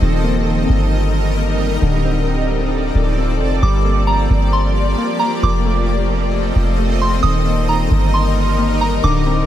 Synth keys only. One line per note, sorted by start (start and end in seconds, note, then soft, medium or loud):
0.02 0.46 D#3 medium
0.24 1.36 A#3 medium
0.47 1.82 D#3 medium
1.37 1.82 A#3 medium
1.82 2.26 D3 loud
2.05 3.17 C4 medium
2.27 3.63 D3 medium
3.18 3.63 C4 medium
3.63 4.07 G3 loud
3.85 4.97 A#3 medium
4.08 5.43 G3 medium
4.98 5.43 A#3 medium
5.43 5.87 F3 loud
5.66 6.77 A3 medium
5.88 7.24 F3 medium
6.78 7.24 A3 medium
7.24 7.67 D#3 medium
7.46 8.58 A#3 medium
7.69 9.04 D#3 medium
8.59 9.04 A#3 medium
9.04 9.46 D3 loud
9.26 9.46 C4 medium